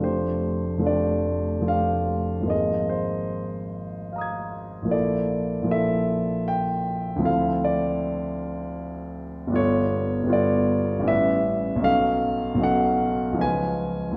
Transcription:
Already playing: F1 F3
0.00 A3 D4 G4 C5
0.77 F1 F3
0.82 A3 D4 G4
0.86 D5
1.59 F1 F3 A3
1.66 D4 G4 F5
2.41 G#1 F3
2.45 A#3 D#4
2.49 G#4 D#5
2.89 C5
4.13 F5 A#5
4.18 D#6 G#6
4.82 A#1 F3
4.87 A#3 E4
4.91 A4 D5
5.62 A#1 F3
5.67 A#3 E4
5.71 A4 E5
6.48 G5
7.16 D2 F3 C4
7.22 E4 A4 F5
7.64 D5
9.47 G1 G3
9.52 B3 F4 A4
9.56 C#5
10.24 G1 G3 B3
10.30 F4 A4 D5
10.99 A1 G3 C#4
11.05 E4 B4 E5
11.76 B1 F#3
11.80 C#4 D#4 A4
11.84 F5
12.55 B1 F#3
12.59 C#4 D#4 A4
12.63 F#5
13.32 C#2 F3
13.36 C#4 D#4 B4
13.41 G#5
14.11 D#2 F#3

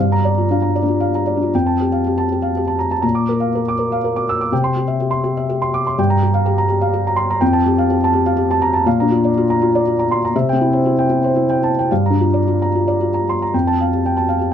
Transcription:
0.00 G2 F5
0.12 A#5
0.25 D5
0.38 F4
0.51 D4 F5
0.62 A#5
0.75 D5
0.83 D4
0.88 F4
1.00 F5
1.15 A#5
1.27 D5
1.37 D4
1.43 F4
1.54 F2 G5
1.66 A5
1.80 G4
1.92 F5
2.06 G4
2.18 A5
2.32 G4
2.42 F5
2.57 G4
2.67 A5
2.79 A#5
2.91 A5
3.02 A#2 A#5
3.15 D6
3.29 A#4
3.40 F5
3.55 A#4
3.68 D6
3.79 A#4
3.92 F5
4.04 A#4
4.16 D6
4.29 E6
4.41 D6
4.52 C3 G5
4.64 C6
4.76 G4
4.88 E5
5.00 G4
5.11 C6
5.24 G4
5.37 E5
5.49 G4
5.62 C6
5.74 D6
5.87 C6
5.98 G2 G5
6.10 A#5
6.23 G4
6.34 F5
6.46 G4
6.58 A#5
6.68 G4
6.81 F5
6.93 G4
7.07 A#5
7.16 C6
7.30 A#5
7.41 F2 G5
7.53 A5
7.66 G4
7.78 F5
7.90 G4
8.04 A5
8.13 G4
8.26 F5
8.37 G4
8.51 A5
8.62 A#5
8.73 A5
8.86 A#2 F5
9.00 D4 A#5
9.10 F4
9.25 D5
9.37 F4
9.50 A#5
9.62 F4
9.75 D5
9.87 F4
9.99 A#5
10.11 C6
10.25 A#5
10.36 C3 E5
10.49 C4 G5
10.61 E4
10.73 C5
10.86 E4
10.99 G5
11.10 E4
11.24 C5
11.36 E4
11.49 G5
11.63 A5
11.79 G5
11.91 G2 F5
12.06 A#5
12.10 D4
12.20 F4
12.34 D5
12.48 F4
12.62 A#5
12.75 F4
12.88 D5
13.01 F4
13.14 A#5
13.29 C6
13.42 A#5
13.54 F2 G5
13.67 A5
13.81 F5
13.93 G4
14.06 G5
14.17 A5
14.29 F5
14.39 G4

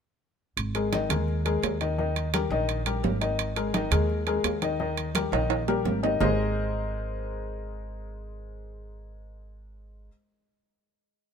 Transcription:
0.57 G#1, high conga, high timbale
0.75 G#3 G#4 A#4, high conga, high timbale
0.92 D#3 D#4 D#5, high conga, high timbale, low timbale
1.09 D#2 G#3 G#4 A#4, high conga, low conga, high timbale
1.28 high conga
1.45 G#3 G#4 A#4, high conga, high timbale
1.62 D#2, high conga, high timbale, low timbale
1.81 D#3 D#4 D#5, high conga, high timbale
1.98 D#3 D#4 D#5, high conga
2.16 high conga, high timbale
2.34 G3 G4 A#4, high conga, high timbale, low timbale
2.50 A#1 D#3 D#4 D#5, high conga
2.69 high conga, high timbale
2.86 G3 G4 A#4, high conga, high timbale
3.03 G#1, high conga, low timbale
3.21 D#3 D#4 D#5, high timbale
3.39 high conga, high timbale
3.56 G#3 G#4 A#4, high conga, high timbale
3.74 D#3 D#4 D#5, high conga, high timbale, low timbale
3.91 D#2 G#3 G#4 A#4, high conga, low conga, high timbale
4.10 high conga
4.27 G#3 G#4 A#4, high conga, high timbale
4.44 D#2, high conga, high timbale, low timbale
4.62 D#3 D#4 D#5, high conga, high timbale
4.80 D#3 D#4 D#5, high conga
4.97 high conga, high timbale
5.15 G3 G4 A#4, high conga, high timbale, low timbale
5.32 A#1 D#3 D#4 D#5, high conga, high timbale
5.50 high conga, high timbale
5.68 G3 G4 A#4, high conga, low timbale
5.85 G#1, high conga, low timbale
6.03 D#3 D#4 D#5, low timbale
6.20 G#1 G#3 D#4 G#4 A#4 C5 D#5, low conga, low timbale

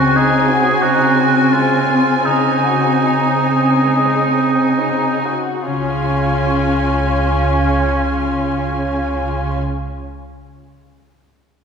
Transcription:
Already playing: C#2 C#3 G#3 C4 F#4 G#4 G#5
0.16 C4 D#4 G#4
0.49 F#4
0.82 D#4 F#4 G#4
1.19 C4
1.53 G#3 F4 F#4
1.91 C4
2.25 C#3 D#4
2.66 F#4
3.03 C4 D#4
3.45 C4
3.86 G#3 G#4
4.31 C4
4.77 D#4 F#4
5.26 F#4
5.66 C#2 C#3 C#4 F4 G#5
5.74 C#4
5.81 F4
5.88 G#4
5.95 F5

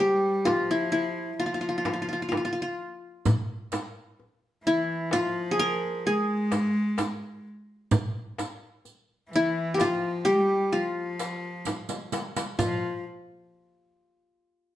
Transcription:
Already playing: A#4 C5
0.00 G3 G4
0.45 F3 F4, darbuka tek, frame drum
0.71 E4
0.92 E4
1.39 F3 F4, darbuka ka
1.46 F4
1.54 F4
1.61 F4
1.69 F4
1.78 F4
1.85 F4, darbuka tek, frame drum
1.93 F4
2.02 F4
2.09 F4
2.13 F4
2.22 F4
2.29 F4, darbuka tek, frame drum
2.37 F4
2.45 F4
2.53 F4
2.62 F4
3.25 riq, frame drum, darbuka dum
3.72 riq, darbuka tek, frame drum
4.20 darbuka ka
4.64 E3 E4
5.11 F3 F4, riq, darbuka tek, frame drum
5.51 G#4
5.59 A#4
6.06 G#3 G#4, darbuka ka
6.51 riq, darbuka tek, frame drum
6.98 riq, darbuka tek, frame drum
7.91 riq, frame drum, darbuka dum
8.38 riq, darbuka tek, frame drum
8.85 riq, darbuka ka
9.31 E3, riq
9.36 E4
9.74 G4, darbuka tek
9.79 F3 F4, riq, frame drum
10.25 G3 G4, riq
10.33 G#3
10.40 G3
10.72 F3 F4, riq, darbuka ka
11.19 riq, darbuka tek
11.65 riq, darbuka tek, frame drum
11.89 riq, darbuka ka
12.12 riq, darbuka tek
12.36 riq, darbuka ka
12.58 F3 F4, riq, frame drum, darbuka dum

